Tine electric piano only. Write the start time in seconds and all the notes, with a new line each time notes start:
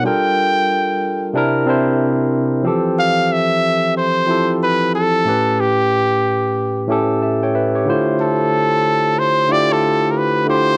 0.03 G3 D4 F4 A4
0.07 A#4
1.33 C3 C4 D4 E4 A#4
1.66 C3 C4 D4 E4
1.70 C5
2.63 E3 F3 C4 G4
2.67 A4
4.27 F3 C4 E4 G4
4.31 A4
5.25 A2 A3 C#4 G4
5.29 B4
6.88 A2 A3 C#4 G4
6.92 A4
7.22 E5 A5
7.43 C#5 G5
7.55 B4 E5
7.75 G4 C#5
7.86 D3 A3 E4 F4
7.90 C5
9.48 D3 A3 E4 F4 G4
10.46 D3 A3 E4 F4
10.50 G4